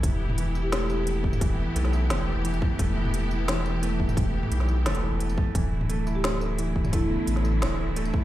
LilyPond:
<<
  \new Staff \with { instrumentName = "Marimba" } { \time 4/4 \key e \minor \tempo 4 = 174 r4. r16 g'8. g'4 r8 | r1 | r1 | r1 |
r4. r16 g'8. r4. | e'16 e'16 b16 b16 r2. | }
  \new Staff \with { instrumentName = "String section" } { \time 4/4 \key e \minor <e b e' g'>1~ | <e b e' g'>1~ | <e b e' g'>1~ | <e b e' g'>1 |
<d a e'>1~ | <d a e'>1 | }
  \new Staff \with { instrumentName = "Felt piano" } { \time 4/4 \key e \minor r4 e4 a8 e'4. | e4 a8 e'4. e4 | a8 e'4. e4 a8 e'8~ | e'4 e4 a8 e8 r4 |
e4 a8 e'4. e4 | a8 e'4. e4 a8 e'8 | }
  \new Staff \with { instrumentName = "Sub bass" } { \clef bass \time 4/4 \key e \minor e,,1~ | e,,8. r16 b,,4 e,,8. e,,8. r8 | e,,1~ | e,,8. r16 b,,4 e,,8. e,,8. r8 |
d,,1~ | d,,8. r16 a,,4 d,,8. d,,8. r8 | }
  \new DrumStaff \with { instrumentName = "Drums" } \drummode { \time 4/4 <hh bd toml>8. toml16 hh8 tamb8 <hh sn>8 tamb8 hh8 bd16 <tamb toml>16 | <hh bd toml>4 hh16 sn16 tamb8 <hh sn>4 hh16 tamb16 bd8 | <hh bd toml>8. toml16 hh8 tamb8 <hh sn>8 tamb8 hh8 bd16 <tamb toml>16 | <hh bd toml>8. toml16 hh16 sn16 tamb8 <hh sn>16 hh8. hh16 tamb16 bd8 |
<hh bd toml>8. toml16 hh8 tamb8 <hh sn>8 tamb8 hh8 bd16 <tamb toml>16 | <hh bd toml>4 hh16 sn16 tamb8 <hh sn>4 hh16 tamb16 bd8 | }
>>